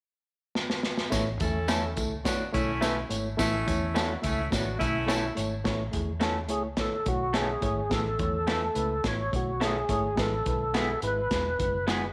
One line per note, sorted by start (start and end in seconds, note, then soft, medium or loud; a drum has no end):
0.55 snare medium
0.70 snare medium
0.83 snare medium
0.98 snare medium
1.10 1.36 A1 medium
1.10 1.28 A3 loud
1.10 1.29 E4 medium
1.10 1.29 C#5 loud
1.10 kick loud
1.10 snare medium
1.10 closed hi-hat medium
1.10 tambourine medium
1.40 1.97 E2 medium
1.40 1.57 A3 medium
1.40 1.94 C#4 medium
1.40 1.58 E4 medium
1.40 1.94 E4 medium
1.40 1.94 A4 medium
1.40 1.58 E5 medium
1.40 kick medium
1.40 closed hi-hat medium
1.40 tambourine medium
1.68 1.85 A3 medium
1.68 1.83 A3 medium
1.68 1.83 C#4 medium
1.68 1.85 E4 medium
1.68 1.83 E4 medium
1.68 1.83 A4 medium
1.68 1.86 C#5 medium
1.68 snare loud
1.68 closed hi-hat medium
1.68 tambourine medium
1.96 2.25 C#2 loud
1.96 2.13 A3 medium
1.96 2.14 E4 medium
1.96 2.14 A4 medium
1.96 kick medium
1.96 closed hi-hat medium
1.96 tambourine medium
2.24 2.49 A1 medium
2.24 2.42 A3 medium
2.24 2.48 B3 medium
2.24 2.48 D4 medium
2.24 2.42 E4 medium
2.24 2.47 F#4 medium
2.24 2.43 C#5 medium
2.24 kick medium
2.24 snare medium
2.24 closed hi-hat medium
2.24 tambourine medium
2.53 3.02 B1 medium
2.53 2.70 A3 medium
2.53 3.07 A3 medium
2.53 3.07 C#4 medium
2.53 2.70 E4 medium
2.53 3.07 E4 loud
2.53 2.71 C#5 medium
2.53 kick medium
2.53 closed hi-hat medium
2.53 tambourine medium
2.81 2.96 A3 medium
2.81 2.99 A3 medium
2.81 2.96 C#4 medium
2.81 2.99 E4 medium
2.81 2.96 E4 medium
2.81 2.97 A4 medium
2.81 2.99 B4 loud
2.81 snare loud
2.81 closed hi-hat medium
2.81 tambourine medium
3.09 3.34 G#1 medium
3.09 3.27 A3 medium
3.09 3.27 E4 medium
3.09 3.27 C#5 medium
3.09 closed hi-hat medium
3.09 tambourine medium
3.37 3.63 A1 loud
3.37 3.55 A3 loud
3.37 3.92 A3 loud
3.37 3.92 C#4 loud
3.37 3.55 E4 medium
3.37 3.92 E4 loud
3.37 3.55 E5 loud
3.37 kick loud
3.37 snare loud
3.37 closed hi-hat medium
3.37 tambourine medium
3.66 4.15 E2 medium
3.66 3.84 A3 medium
3.66 3.84 E4 medium
3.66 3.84 C#5 medium
3.66 kick medium
3.66 closed hi-hat medium
3.66 tambourine medium
3.94 4.12 A3 medium
3.94 4.09 A3 medium
3.94 4.19 B3 medium
3.94 4.10 C#4 medium
3.94 4.19 D4 medium
3.94 4.12 E4 medium
3.94 4.10 E4 medium
3.94 4.19 F#4 medium
3.94 4.10 A4 medium
3.94 4.12 C#5 medium
3.94 snare loud
3.94 closed hi-hat medium
3.94 tambourine medium
4.22 4.48 C#2 medium
4.22 4.40 A3 medium
4.22 4.47 A3 loud
4.22 4.47 C#4 loud
4.22 4.40 E4 medium
4.22 4.47 E4 loud
4.22 4.40 E5 medium
4.22 kick medium
4.22 closed hi-hat medium
4.22 tambourine medium
4.51 4.76 A1 medium
4.51 4.68 A3 medium
4.51 4.75 B3 medium
4.51 4.75 D4 medium
4.51 4.69 E4 medium
4.51 4.75 F#4 medium
4.51 4.69 C#5 medium
4.51 kick medium
4.51 snare medium
4.51 closed hi-hat medium
4.51 tambourine medium
4.79 5.29 B1 medium
4.79 4.96 A3 medium
4.79 5.33 A3 medium
4.79 5.33 C#4 medium
4.79 5.33 E4 loud
4.79 4.97 E4 medium
4.79 4.97 E5 loud
4.79 kick medium
4.79 closed hi-hat medium
4.79 tambourine medium
5.07 5.25 A3 medium
5.07 5.22 A3 medium
5.07 5.23 C#4 medium
5.07 5.25 E4 medium
5.07 5.23 E4 medium
5.07 5.23 A4 medium
5.07 5.25 C#5 loud
5.07 snare loud
5.07 closed hi-hat medium
5.07 tambourine medium
5.35 5.61 G#1 medium
5.35 5.53 A3 medium
5.35 5.53 E4 medium
5.35 5.54 C#5 medium
5.35 closed hi-hat medium
5.35 tambourine medium
5.64 5.89 A1 medium
5.64 5.82 A3 loud
5.64 5.82 E4 medium
5.64 5.82 C#5 loud
5.64 kick medium
5.64 snare loud
5.64 closed hi-hat medium
5.92 6.49 E2 medium
5.92 6.10 A3 medium
5.92 6.10 E4 medium
5.92 6.10 G#4 medium
5.92 kick medium
5.92 closed hi-hat medium
6.20 6.35 A3 medium
6.20 6.38 A3 medium
6.20 6.36 C#4 medium
6.20 6.38 E4 medium
6.20 6.36 E4 medium
6.20 6.36 A4 medium
6.20 6.39 C#5 medium
6.20 snare loud
6.20 closed hi-hat medium
6.48 6.78 C#2 medium
6.48 6.66 A3 medium
6.48 6.67 E4 medium
6.48 6.63 G#4 medium
6.48 6.67 C#5 medium
6.48 closed hi-hat medium
6.77 7.02 A1 medium
6.77 6.95 A3 medium
6.77 6.95 E4 medium
6.77 7.09 A4 medium
6.77 6.95 C#5 medium
6.77 kick medium
6.77 snare medium
6.77 closed hi-hat medium
7.06 7.55 B1 medium
7.06 7.23 A3 medium
7.06 7.23 E4 medium
7.06 7.37 F#4 medium
7.06 7.23 C#5 medium
7.06 kick medium
7.06 closed hi-hat medium
7.33 7.51 A3 medium
7.33 7.49 A3 medium
7.33 7.49 C#4 medium
7.33 7.51 E4 medium
7.33 7.49 E4 medium
7.33 7.94 G#4 medium
7.33 7.49 A4 medium
7.33 7.52 C#5 medium
7.33 snare loud
7.33 closed hi-hat medium
7.61 7.87 G#1 medium
7.61 7.79 A3 medium
7.61 7.80 E4 medium
7.61 7.80 C#5 loud
7.61 kick medium
7.61 closed hi-hat medium
7.90 8.15 A1 medium
7.90 8.08 A3 medium
7.90 8.08 E4 medium
7.90 8.08 G#4 medium
7.90 8.48 A4 medium
7.90 kick loud
7.90 snare medium
7.90 closed hi-hat medium
8.18 8.68 E2 medium
8.18 8.36 A3 medium
8.18 8.36 E4 medium
8.18 8.37 C#5 medium
8.18 kick medium
8.18 closed hi-hat medium
8.47 8.64 A3 medium
8.47 8.62 A3 medium
8.47 8.62 C#4 medium
8.47 8.65 E4 medium
8.47 8.62 E4 medium
8.47 8.63 A4 medium
8.47 9.07 A4 medium
8.47 8.65 B4 medium
8.47 snare loud
8.47 closed hi-hat medium
8.75 9.00 C#2 medium
8.75 8.93 A3 medium
8.75 8.93 E4 medium
8.75 8.93 B4 medium
8.75 closed hi-hat medium
9.04 9.29 A1 medium
9.04 9.21 A3 medium
9.04 9.22 E4 medium
9.04 9.22 C#5 medium
9.04 9.35 C#5 loud
9.04 kick medium
9.04 snare medium
9.04 closed hi-hat medium
9.32 9.81 B1 medium
9.32 9.50 A3 medium
9.32 9.50 E4 medium
9.32 9.64 F#4 medium
9.32 9.50 C#5 medium
9.32 kick medium
9.32 closed hi-hat medium
9.60 9.78 A3 medium
9.60 9.75 A3 medium
9.60 9.76 C#4 medium
9.60 9.76 E4 medium
9.60 9.78 E4 medium
9.60 9.76 A4 loud
9.60 9.79 C#5 medium
9.60 snare medium
9.60 closed hi-hat medium
9.65 10.21 G#4 medium
9.89 10.14 G#1 medium
9.89 10.06 A3 medium
9.89 10.07 E4 medium
9.89 10.07 C#5 loud
9.89 kick medium
9.89 closed hi-hat medium
10.16 10.42 A1 medium
10.16 10.34 G#3 medium
10.16 10.34 E4 medium
10.16 10.35 B4 medium
10.16 kick loud
10.16 snare loud
10.16 closed hi-hat medium
10.21 11.00 A4 medium
10.45 10.95 B1 medium
10.45 10.63 G#3 medium
10.45 10.63 E4 medium
10.45 10.64 B4 medium
10.45 kick medium
10.45 closed hi-hat medium
10.73 10.91 G#3 medium
10.73 10.89 G#3 medium
10.73 10.89 B3 medium
10.73 10.91 E4 medium
10.73 10.89 E4 medium
10.73 10.89 G#4 medium
10.73 10.92 B4 medium
10.73 snare loud
10.73 closed hi-hat medium
11.02 11.27 G#1 medium
11.02 11.20 G#3 medium
11.02 11.20 E4 medium
11.02 11.20 B4 medium
11.02 closed hi-hat medium
11.07 11.86 B4 medium
11.31 11.55 E1 medium
11.31 11.48 G#3 medium
11.31 11.48 E4 medium
11.31 11.48 B4 medium
11.31 kick medium
11.31 snare medium
11.31 closed hi-hat medium
11.58 12.08 F#1 medium
11.58 11.76 G#3 medium
11.58 11.76 E4 medium
11.58 11.77 B4 medium
11.58 kick medium
11.58 closed hi-hat medium
11.87 12.02 G#3 medium
11.87 12.05 G#3 medium
11.87 12.02 B3 medium
11.87 12.02 E4 medium
11.87 12.05 E4 medium
11.87 12.02 G#4 medium
11.87 12.05 B4 medium
11.87 snare loud
11.87 closed hi-hat medium